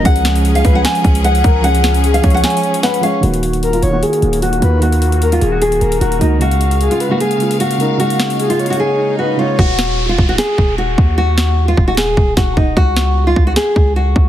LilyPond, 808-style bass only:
\new Staff \with { instrumentName = "808-style bass" } { \clef bass \time 4/4 \key ees \minor \tempo 4 = 151 des,4. des,8 r8 des,4 des,8~ | des,4. des,8 r2 | ees,,4. ees,,8 r8 ees,,4 ees,8~ | ees,4. ees,,4 ees,,8 ees,,8 des,8~ |
des,4~ des,16 r2 r8. | r1 | ees,,4. ees,,8 r8 ees,,4 ees,8~ | ees,4. ees,,4 ees,,8 ees,,8 ees,,8 |
des,4. des,8 r8 des,4 des,8 | }